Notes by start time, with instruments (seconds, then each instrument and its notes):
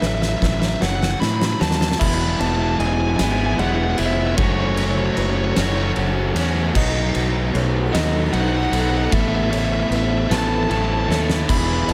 Already playing: clean electric guitar A3 E4, ambient pad A3 E4 B4
0.01 fingered electric bass A1, overdriven electric guitar F#2 C#3 F#3, felt piano B4, clean electric guitar C#5, snare
0.07 lead electric guitar E5
0.15 lead electric guitar E5
0.22 lead electric guitar E5, snare
0.29 lead electric guitar E5
0.38 fingered electric bass A1, overdriven electric guitar F#2 C#3 F#3, clean electric guitar E4, lead electric guitar E5, kick
0.43 lead electric guitar E5, snare
0.53 lead electric guitar E5
0.60 lead electric guitar E5, snare
0.69 lead electric guitar E5
0.76 lead electric guitar E5
0.81 fingered electric bass F#1, overdriven electric guitar F#2 C#3 F#3, clean electric guitar C#5, felt piano C#5, lead electric guitar F#5, snare
0.89 lead electric guitar F#5
0.96 lead electric guitar F#5
1.03 lead electric guitar F#5, snare
1.11 lead electric guitar F#5
1.20 overdriven electric guitar F#2 C#3 F#3, fingered electric bass A2, clean electric guitar E4, lead electric guitar B5, snare
1.28 lead electric guitar B5
1.36 lead electric guitar B5
1.42 lead electric guitar B5, snare
1.53 lead electric guitar B5
1.60 fingered electric bass D#2, overdriven electric guitar F#2 C#3 F#3, clean electric guitar F#4, lead electric guitar A5, snare
1.68 lead electric guitar A5, snare
1.76 lead electric guitar A5
1.81 lead electric guitar A5, snare
1.88 lead electric guitar A5, snare
1.99 fingered electric bass E1, overdriven electric guitar E3 G#3 B3 E4, clean electric guitar E3, ambient pad G#3 E4 B5, felt piano E5, lead electric guitar B5, kick, crash
2.06 lead electric guitar B5
2.14 lead electric guitar B5
2.21 lead electric guitar B5
2.30 lead electric guitar B5
2.39 fingered electric bass E1, overdriven electric guitar G#3 B3 E4, clean electric guitar B3, lead electric guitar A5, ride
2.47 lead electric guitar A5
2.55 lead electric guitar A5
2.62 lead electric guitar A5
2.68 lead electric guitar A5
2.79 fingered electric bass E1, clean electric guitar E4, felt piano D#5, lead electric guitar G#5, ride
2.87 lead electric guitar G#5
2.94 lead electric guitar G#5
3.01 lead electric guitar G#5
3.10 lead electric guitar G#5
3.17 fingered electric bass G#1, overdriven electric guitar G#3 B3 E4, clean electric guitar B4, felt piano E5, lead electric guitar G#5, snare, ride
3.21 overdriven electric guitar E3, lead electric guitar G#5
3.32 lead electric guitar G#5
3.39 lead electric guitar G#5
3.46 lead electric guitar G#5
3.54 lead electric guitar G#5
3.58 fingered electric bass E1, overdriven electric guitar E3 G#3 B3 E4, clean electric guitar G#4, lead electric guitar F#5, ride
3.68 lead electric guitar F#5
3.75 lead electric guitar F#5
3.84 lead electric guitar F#5
3.90 lead electric guitar F#5
3.97 fingered electric bass F1, overdriven electric guitar G#3 B3 E4, clean electric guitar B4, lead electric guitar E5, ride
4.06 lead electric guitar E5
4.13 lead electric guitar E5
4.20 lead electric guitar E5
4.27 lead electric guitar E5
4.36 fingered electric bass F#1, clean electric guitar F#3, overdriven electric guitar F#3 A3 C#4 F#4, ambient pad F#4 A5, lead electric guitar C#5, kick, ride
4.44 lead electric guitar C#5
4.52 lead electric guitar C#5
4.60 lead electric guitar C#5
4.68 lead electric guitar C#5
4.75 clean electric guitar A3, overdriven electric guitar C#4 F#4, lead electric guitar C#5, felt piano C#5, ride
4.80 overdriven electric guitar A3
4.84 lead electric guitar C#5
4.91 lead electric guitar C#5
4.98 lead electric guitar C#5
5.06 lead electric guitar C#5
5.14 fingered electric bass F#1, clean electric guitar E4, felt piano B4, lead electric guitar C#5, ride
5.21 lead electric guitar C#5
5.30 lead electric guitar C#5
5.37 lead electric guitar C#5
5.45 lead electric guitar C#5
5.52 overdriven electric guitar F#4, lead electric guitar C#5, clean electric guitar C#5
5.56 fingered electric bass F#1, overdriven electric guitar F#3 A3 C#4, snare, ride
5.61 lead electric guitar C#5
5.68 lead electric guitar C#5
5.76 lead electric guitar C#5
5.84 lead electric guitar C#5
5.95 fingered electric bass F#1, overdriven electric guitar F#3 A3 C#4 F#4, clean electric guitar F#4, ride
6.33 fingered electric bass E2, overdriven electric guitar A3 C#4 F#4, clean electric guitar C#5, felt piano C#5, ride
6.73 fingered electric bass B1, overdriven electric guitar B2 F#3 A3 D#4 F#4, clean electric guitar B2, distorted electric guitar B3, ambient pad A4 D#5 B5, felt piano D#5, kick, crash
7.13 fingered electric bass B1, clean electric guitar F#3, overdriven electric guitar A3 D#4 F#4, ride
7.53 fingered electric bass B1, clean electric guitar A3, felt piano C#5, ride
7.92 fingered electric bass D#2, overdriven electric guitar B2 F#3 A3 D#4 F#4, distorted electric guitar B3, clean electric guitar A4, felt piano D#5, snare, ride
8.32 fingered electric bass B1, overdriven electric guitar F#3 A3 D#4 F#4, distorted electric guitar B3, clean electric guitar D#4, lead electric guitar F#5, ride
8.41 lead electric guitar F#5
8.48 lead electric guitar F#5
8.56 lead electric guitar F#5
8.63 lead electric guitar F#5
8.72 fingered electric bass B1, overdriven electric guitar A3 D#4 F#4, distorted electric guitar B3, clean electric guitar A4, lead electric guitar F#5, ride
8.81 lead electric guitar F#5
8.90 lead electric guitar F#5
8.98 lead electric guitar F#5
9.05 lead electric guitar F#5
9.11 fingered electric bass A1, clean electric guitar A3, overdriven electric guitar A3 B3 E4 A4, ambient pad E4, lead electric guitar E5, kick, ride
9.21 lead electric guitar E5
9.28 lead electric guitar E5
9.35 lead electric guitar E5
9.44 lead electric guitar E5
9.51 overdriven electric guitar B3 E4 A4, felt piano C#5, lead electric guitar E5, ride
9.59 lead electric guitar E5
9.65 lead electric guitar E5
9.74 lead electric guitar E5
9.80 lead electric guitar E5
9.89 fingered electric bass A1, clean electric guitar B3, felt piano B4, lead electric guitar E5, ride
9.96 lead electric guitar E5
10.04 lead electric guitar E5
10.11 lead electric guitar E5
10.18 lead electric guitar E5
10.27 fingered electric bass A1, overdriven electric guitar E4 A4, clean electric guitar A4, lead electric guitar E5
10.31 overdriven electric guitar A3 B3, lead electric guitar A5, snare, ride
10.38 lead electric guitar A5
10.47 lead electric guitar A5
10.54 lead electric guitar A5
10.63 lead electric guitar A5
10.69 fingered electric bass A1, overdriven electric guitar A3 B3 E4 A4, clean electric guitar E4, lead electric guitar A5, ride
10.77 lead electric guitar A5
10.85 lead electric guitar A5
10.93 lead electric guitar A5
11.00 lead electric guitar A5
11.08 fingered electric bass D#2, overdriven electric guitar E4 A4, clean electric guitar A4, felt piano C#5, lead electric guitar A5, snare
11.12 overdriven electric guitar B3
11.30 snare
11.48 fingered electric bass E1, clean electric guitar E3, overdriven electric guitar E3 B3 E4 G#4, ambient pad G#3, felt piano E5, lead electric guitar B5, kick, crash, ride
11.58 lead electric guitar B5
11.64 lead electric guitar B5
11.73 lead electric guitar B5
11.81 lead electric guitar B5
11.87 fingered electric bass E1, clean electric guitar G#3, overdriven electric guitar E4 G#4, lead electric guitar A5, ride